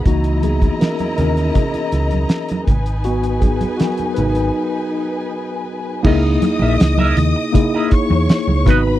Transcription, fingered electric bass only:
\new Staff \with { instrumentName = "Fingered electric bass" } { \clef bass \time 4/4 \key cis \dorian \tempo 4 = 80 cis,4 r8 dis,8 r8 cis,8 r8 gis,,8~ | gis,,4 r8 gis,,8 r2 | cis,8 r16 ais,,16 cis,8 dis,16 r4 e,16 r16 cis,16 gis,,8 | }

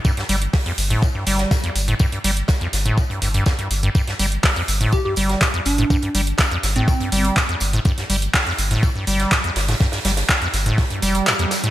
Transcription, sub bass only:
\new Staff \with { instrumentName = "Sub bass" } { \clef bass \time 4/4 \key g \minor \tempo 4 = 123 r8 g,,8 r8 g,,8 r8 g,,8 r8 g,,8 | r8 g,,8 r8 g,,8 r8 g,,8 r8 g,,8 | r8 g,,8 r8 g,,8 r8 g,,8 r8 g,,8 | r8 g,,8 r8 g,,8 r8 g,,8 r8 g,,8 |
r8 g,,8 r8 g,,8 r8 g,,8 r8 g,,8 | r8 g,,8 r8 g,,8 r8 f,,8 r4 | }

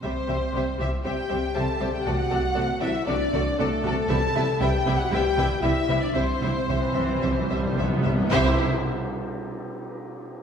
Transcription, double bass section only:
\new Staff \with { instrumentName = "Double bass section" } { \clef bass \time 4/4 \key c \lydian \tempo 4 = 117 c,8 c,8 c,8 c,8 c,8 c,8 c,8 c,8 | c,8 c,8 c,8 c,8 c,8 c,8 c,8 c,8 | c,8 c,8 c,8 c,8 c,8 c,8 c,8 c,8 | c,8 c,8 c,8 c,8 c,8 c,8 c,8 c,8 |
c,8 r2. r8 | }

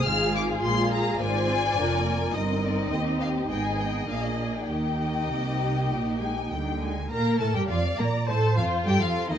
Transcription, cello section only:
\new Staff \with { instrumentName = "Cello section" } { \clef bass \time 4/4 \key ees \major \tempo 4 = 103 << { r1 | r1 | r2 r8 aes8 g8 aes8 | \key bes \major bes8 a16 g16 f8 bes8 a8 f8 g16 f8 ees16 | } \\ { aes,4 bes,4 aes,4 f,4 | g,4 ees,4 aes,4 bes,4 | ees4 c4 bes,8 r8 d4 | r1 | } >> }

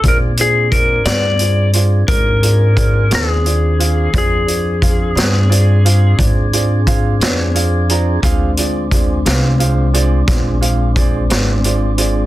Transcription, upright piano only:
\new Staff \with { instrumentName = "Upright piano" } { \time 12/8 \key bes \mixolydian \tempo 4. = 59 <f' aes' c'' d''>8 <f' aes' c'' d''>8 <f' aes' c'' d''>8 <f' aes' c'' d''>8 <f' aes' c'' d''>8 <f' aes' c'' d''>8 <f' aes' c'' d''>8 <f' aes' c'' d''>8 <f' aes' c'' d''>8 <f' aes' c'' d''>8 <f' aes' c'' d''>8 <f' aes' c'' f''>8 | <f' aes' c'' d''>8 <f' aes' c'' d''>8 <f' aes' c'' f''>8 <f' aes' c'' d''>8 <f' aes' c'' d''>8 <f' aes' c'' f''>8 <f' aes' c'' d''>8 <f' aes' c'' d''>8 <f' aes' c'' f''>8 <f' aes' c'' d''>8 <f' aes' c'' d'' f''>8 <f' aes' c'' d'' bes''>8 | <f' aes' c'' f''>8 <f' aes' c'' d''>8 <f' aes' c'' d''>8 <f' aes' c'' f''>8 <f' aes' c'' f''>8 <f' aes' c'' d''>8 <f' aes' c'' d''>8 <f' aes' c'' f''>8 <f' aes' c'' d''>8 <f' aes' c'' d''>8 <f' aes' c'' d''>8 <f' aes' c'' d''>8 | }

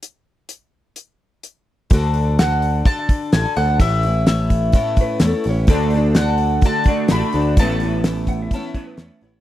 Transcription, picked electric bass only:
\new Staff \with { instrumentName = "Picked electric bass" } { \clef bass \time 4/4 \key d \lydian \tempo 4 = 127 r1 | d,2 r4 a,,16 r16 d,8 | a,,2 r4 e,16 r16 a,,8 | d,2 r4 a,,16 r16 d,8 |
a,,2 r4 e,16 r16 a,,8 | }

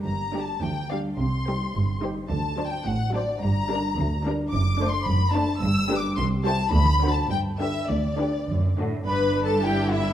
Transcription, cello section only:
\new Staff \with { instrumentName = "Cello section" } { \clef bass \time 2/4 \key g \minor \tempo 4 = 107 g,4 d,4 | c4 g,4 | d4 a,4 | g,4 d,4 |
\key g \major fis,4 fis,4 | g,4 c,4 | d,4 g,4 | d,4 fis,8 a,8 |
g,2 | }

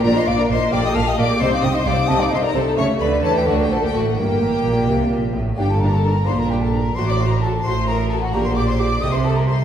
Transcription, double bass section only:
\new Staff \with { instrumentName = "Double bass section" } { \clef bass \time 6/8 \key g \minor \tempo 4. = 87 bes,,8 bes,,8 bes,,8 bes,,8 bes,,8 bes,,8 | c,8 c,8 c,8 c,8 c,8 c,8 | cis,8 d,8 e,8 d,8 bes,,8 a,,8 | g,,8 a,,8 bes,,8 c,8 bes,,8 a,,8 |
g,,4. bes,,4. | a,,4. a,,4. | bes,,4. c,4. | }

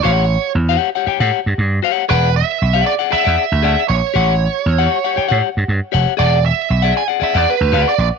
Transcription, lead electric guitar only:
\new Staff \with { instrumentName = "Lead electric guitar" } { \time 4/4 \key a \major \tempo 4 = 117 cis''4 r2. | b'8 e''4 d''8 e''4. cis''8~ | cis''2~ cis''8 r4. | d''8 e''4 gis''8 e''16 d''16 b'8. d''16 d''8 | }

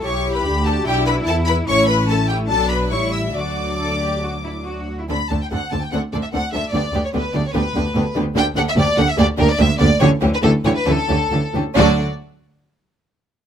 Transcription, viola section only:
\new Staff \with { instrumentName = "Viola section" } { \time 4/4 \key d \major \tempo 4 = 144 << { g'4 g'8 fis'4. e'4 | e'4 e'4 d'4 e'4 | d'2.~ d'8 r8 | c'8 c'8 c'8 c'8 c'8 c'8 c'8 c'8 |
b8 b8 b8 b8 b8 b8 b8 b8 | bes8 bes8 bes8 bes8 bes8 bes8 bes8 bes8 | a8 a8 a8 a8 a8 a8 a8 a8 | a8 r2. r8 | } \\ { e'4 d'4 d'4 e'4 | a4 a4 fis4 g4 | fis2.~ fis8 r8 | d8 d8 d8 d8 d8 d8 d8 d8 |
d8 d8 d8 d8 d8 d8 d8 d8 | d8 d8 d8 d8 d8 d8 d8 d8 | e8 e8 e8 e8 e8 e8 e8 e8 | fis8 r2. r8 | } >> }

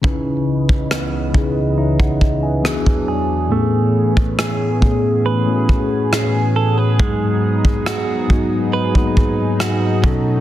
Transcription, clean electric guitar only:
\new Staff \with { instrumentName = "Clean electric guitar" } { \time 4/4 \key cis \minor \tempo 4 = 69 cis4 b4 dis'4 e8 gis'8 | a4 gis'4 b'4 gis'8 a'16 b'16 | gis4 fis'4 b'4 fis'8 b,8 | }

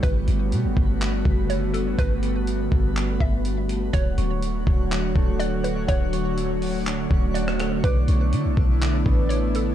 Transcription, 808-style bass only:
\new Staff \with { instrumentName = "808-style bass" } { \clef bass \time 4/4 \key d \major \tempo 4 = 123 g,,8 g,,8 b,16 g,,16 g,,4 fis,,4. | g,,4. g,,4 g,,4. | d,,8 d,,4 d,,4 d,,4. | d,,2~ d,,8 d,,4. |
b,,8 b,,8 d16 b,,16 b,,4 a,,4. | }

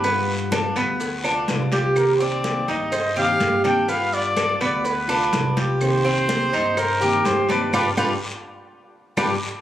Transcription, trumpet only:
\new Staff \with { instrumentName = "Trumpet" } { \time 4/4 \key c \minor \tempo 4 = 125 b'8 r2. r8 | bes'8 d''4 ees''4 f''4 g''8 | f''8 d''4 d''8 b'4. r8 | c''2 bes'4 c''8 b'8 |
b'8 b'8 r2 b'8 r8 | }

